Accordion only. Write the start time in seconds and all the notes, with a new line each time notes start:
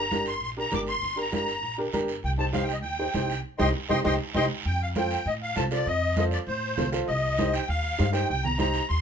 Already playing: A#5
0.28 C6
0.43 C6
0.59 A#5
0.74 D6
0.89 C6
1.19 A#5
1.35 A#5
2.25 G5
2.39 A5
2.53 F5
2.63 G5
2.73 D#5
2.82 G5
3.58 D#5 G5 C6
3.90 D#5 G5 C6
4.05 D#5 G5 C6
4.35 D#5 G5 C6
4.67 G5
4.82 F5
4.97 G5
5.27 D#5
5.42 F5
5.56 A5
5.72 D5
5.87 D#5
6.17 D#5
6.32 D5
6.47 C5
7.08 D#5
7.53 G5
7.68 F5
8.14 G5
8.29 G5
8.44 A#5
8.59 A#5
8.89 C6